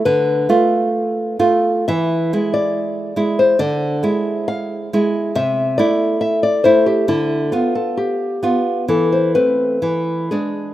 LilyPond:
<<
  \new Staff \with { instrumentName = "Nylon-string guitar" } { \time 4/4 \key a \minor \tempo 4 = 68 b'2 e''8. d''4 c''16 | d''4 f''4 e''8 d''8 e''16 d''16 c''16 g'16 | e'8 f'16 a'16 g'4 a'16 c''16 b'4 gis'8 | }
  \new Staff \with { instrumentName = "Nylon-string guitar" } { \time 4/4 \key a \minor d8 <a f'>4 <a f'>8 e8 <gis e'>4 <gis e'>8 | d8 <gis e'>4 <gis e'>8 c8 <a e'>4 <a e'>8 | d8 <b f'>4 <b f'>8 e8 <a c'>8 e8 <gis d'>8 | }
>>